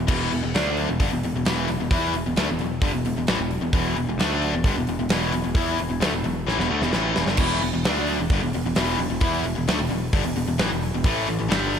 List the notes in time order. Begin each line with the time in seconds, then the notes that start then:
0.07 E1 E2 B2 E3, kick, crash
0.31 E1 E2 B2, open hi-hat
0.43 E1 E2 B2
0.54 D2 D3 A3 D4, snare, open hi-hat
0.77 open hi-hat
0.88 E1 E2 B2
1.00 G1 G2 D3, kick, open hi-hat
1.12 E1 E2 B2
1.23 E1 E2 B2, open hi-hat
1.34 E1 E2 B2
1.45 E1 E2 B2 E3, snare, open hi-hat
1.68 E1 E2 B2, snare, open hi-hat
1.80 E1 E2 B2
1.91 E2 E3 B3 E4, kick, open hi-hat
2.14 E1 E2 B2, open hi-hat
2.26 E1 E2 B2
2.36 D2 D3 A3, snare, open hi-hat
2.49 E1 E2 B2
2.59 E1 E2 B2, open hi-hat
2.82 G1 G2 D3, kick, open hi-hat
2.93 E1 E2 B2
3.05 E1 E2 B2, open hi-hat
3.16 E1 E2 B2
3.27 A1 A2 E3, snare, open hi-hat
3.39 E1 E2 B2
3.51 open hi-hat
3.61 E1 E2 B2
3.73 E1 E2 B2 E3, kick, open hi-hat
3.96 E1 E2 B2, open hi-hat
4.07 E1 E2 B2
4.18 D2 D3 A3 D4, snare, open hi-hat
4.32 snare
4.42 open hi-hat
4.53 E1 E2 B2
4.64 G1 G2 D3, kick, open hi-hat
4.76 E1 E2 B2
4.87 E1 E2 B2, open hi-hat
4.99 E1 E2 B2
5.09 E1 E2 B2 E3, snare, open hi-hat
5.32 E1 E2 B2, open hi-hat
5.44 E1 E2 B2
5.55 E2 E3 B3 E4, kick, open hi-hat
5.78 E1 E2 B2, open hi-hat
5.89 E1 E2 B2
6.00 D2 D3 A3, snare, open hi-hat
6.12 E1 E2 B2
6.24 E1 E2 B2, open hi-hat
6.46 A1 A2 E3, snare
6.58 E1 E2 B2, snare
6.69 D2 D3 A3
6.81 E1 E2 B2, snare
6.92 A1 A2 E3 A3, snare
7.15 E1 E2 B2, snare
7.25 G1 G2 D3, snare
7.37 E1 E2 B2 E3, kick, crash
7.61 E1 E2 B2, open hi-hat
7.73 E1 E2 B2
7.84 D2 D3 A3 D4, snare, open hi-hat
7.98 snare
8.07 open hi-hat
8.19 E1 E2 B2
8.30 G1 G2 D3, kick, open hi-hat
8.43 E1 E2 B2
8.53 E1 E2 B2, open hi-hat
8.64 E1 E2 B2
8.75 E1 E2 B2 E3, snare, open hi-hat
8.99 E1 E2 B2, open hi-hat
9.10 E1 E2 B2
9.20 E2 E3 B3 E4, kick, open hi-hat
9.43 E1 E2 B2, open hi-hat
9.55 E1 E2 B2
9.67 D2 D3 A3, snare, open hi-hat
9.77 E1 E2 B2
9.90 E1 E2 B2, open hi-hat
10.13 G1 G2 D3, kick, open hi-hat
10.25 E1 E2 B2
10.36 E1 E2 B2, open hi-hat
10.46 E1 E2 B2
10.58 A1 A2 E3, snare, open hi-hat
10.70 E1 E2 B2
10.81 open hi-hat
10.94 E1 E2 B2
11.04 A1 A2 E3 A3, kick, open hi-hat
11.28 A1 A2 E3, open hi-hat
11.39 A1 A2 E3
11.48 G1 G2 D3 G3, snare, open hi-hat
11.74 open hi-hat